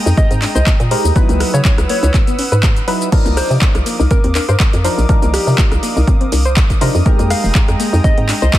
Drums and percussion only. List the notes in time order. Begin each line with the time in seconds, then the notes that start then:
0.07 shaker
0.17 kick, closed hi-hat, shaker
0.31 closed hi-hat, shaker
0.42 clap, open hi-hat
0.55 closed hi-hat, shaker
0.67 kick, clap, closed hi-hat, shaker
0.80 closed hi-hat, shaker
0.91 open hi-hat
1.05 shaker
1.16 kick, closed hi-hat, shaker
1.29 closed hi-hat, shaker
1.40 cross-stick, open hi-hat
1.54 closed hi-hat, shaker
1.65 kick, clap, closed hi-hat, shaker
1.78 cross-stick, closed hi-hat, shaker
1.89 open hi-hat
2.03 closed hi-hat, shaker
2.14 kick, clap, closed hi-hat, shaker
2.27 closed hi-hat, shaker
2.39 open hi-hat
2.52 closed hi-hat, shaker
2.63 kick, clap, closed hi-hat, shaker
2.76 closed hi-hat, shaker
2.88 open hi-hat
3.01 closed hi-hat, shaker
3.12 kick, closed hi-hat, crash, shaker
3.26 closed hi-hat, shaker
3.37 cross-stick, open hi-hat, shaker
3.51 shaker
3.61 kick, clap, closed hi-hat, shaker
3.75 cross-stick, closed hi-hat, shaker
3.86 open hi-hat, shaker
4.00 shaker
4.11 kick, closed hi-hat, shaker
4.24 closed hi-hat
4.35 clap, open hi-hat, shaker
4.49 closed hi-hat, shaker
4.60 kick, clap, closed hi-hat, shaker
4.73 closed hi-hat, shaker
4.84 open hi-hat, shaker
4.99 shaker
5.09 kick, closed hi-hat, shaker
5.22 closed hi-hat, shaker
5.34 cross-stick, open hi-hat, shaker
5.48 shaker
5.58 kick, clap, closed hi-hat, shaker
5.72 cross-stick, closed hi-hat, shaker
5.83 open hi-hat, shaker
5.97 shaker
6.08 kick, closed hi-hat, shaker
6.21 closed hi-hat
6.32 open hi-hat, shaker
6.45 closed hi-hat, shaker
6.57 kick, clap, closed hi-hat, shaker
6.70 kick, closed hi-hat, shaker
6.81 open hi-hat, shaker
6.95 shaker
7.06 kick, closed hi-hat, shaker
7.19 closed hi-hat, shaker
7.30 cross-stick, open hi-hat, shaker
7.45 shaker
7.55 kick, clap, closed hi-hat, shaker
7.68 cross-stick, closed hi-hat, shaker
7.80 open hi-hat, shaker
7.94 shaker
8.04 kick, closed hi-hat, shaker
8.18 closed hi-hat
8.29 clap, open hi-hat, shaker
8.42 closed hi-hat, shaker
8.53 kick, clap, closed hi-hat, shaker